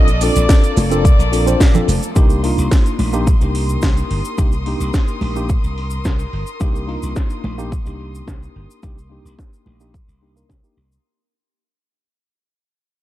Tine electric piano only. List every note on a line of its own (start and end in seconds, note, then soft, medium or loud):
0.21 0.88 C4 medium
0.21 0.88 D4 medium
0.21 0.88 F4 medium
0.21 0.89 A4 medium
0.91 1.05 C4 medium
0.91 1.05 D4 medium
0.91 1.05 F4 medium
0.91 1.05 A4 loud
1.32 1.44 C4 medium
1.32 1.45 D4 medium
1.32 1.45 F4 medium
1.32 1.45 A4 medium
1.46 1.60 C4 medium
1.46 1.60 D4 medium
1.46 1.61 F4 medium
1.46 1.61 C5 medium
1.74 1.88 C4 medium
1.74 1.88 D4 medium
1.74 1.89 F4 medium
1.74 1.89 A4 loud
2.15 2.40 A#3 medium
2.15 2.40 D4 medium
2.15 2.41 D#4 medium
2.15 2.41 G4 loud
2.43 3.10 A#3 medium
2.43 3.10 D4 medium
2.43 3.11 D#4 medium
2.43 3.11 F4 medium
3.13 3.27 A#3 medium
3.13 3.27 D4 medium
3.13 3.27 D#4 medium
3.13 3.28 G4 loud
3.41 4.35 A#3 medium
3.41 4.35 D4 medium
3.41 4.35 D#4 medium
3.41 4.36 G4 medium
4.38 4.53 A#3 medium
4.38 4.53 D4 medium
4.38 4.53 D#4 medium
4.38 4.53 G4 medium
4.66 5.32 A#3 medium
4.66 5.33 D4 medium
4.66 5.33 D#4 medium
4.66 5.33 G4 medium
5.36 5.50 A#3 medium
5.36 5.50 D4 medium
5.36 5.50 D#4 medium
5.36 5.50 G4 medium
6.60 6.85 A#3 medium
6.60 6.85 D4 medium
6.60 6.85 D#4 medium
6.60 6.85 G4 loud
6.87 7.54 A#3 medium
6.87 7.54 D4 medium
6.87 7.55 D#4 medium
6.87 7.55 F4 medium
7.58 7.72 A#3 medium
7.58 7.72 D4 medium
7.58 7.72 D#4 medium
7.58 7.72 G4 loud
7.85 8.79 A#3 medium
7.85 8.79 D4 medium
7.85 8.80 D#4 medium
7.85 8.80 G4 medium
8.83 8.97 A#3 medium
8.83 8.97 D4 medium
8.83 8.97 D#4 medium
8.83 8.98 G4 medium
9.09 9.76 A#3 medium
9.09 9.77 D4 medium
9.09 9.77 D#4 medium
9.09 9.77 G4 medium
9.80 9.94 A#3 medium
9.80 9.94 D4 medium
9.80 9.94 D#4 medium
9.80 9.94 G4 medium
10.21 10.34 A#3 medium
10.21 10.34 D4 medium
10.21 10.34 D#4 medium
10.21 10.34 G4 medium
10.36 10.49 A#3 medium
10.36 10.50 D4 medium
10.36 10.50 D#4 medium
10.36 10.50 A#4 medium
10.63 10.77 A#3 medium
10.63 10.77 D4 medium
10.63 10.78 D#4 medium
10.63 10.78 G4 medium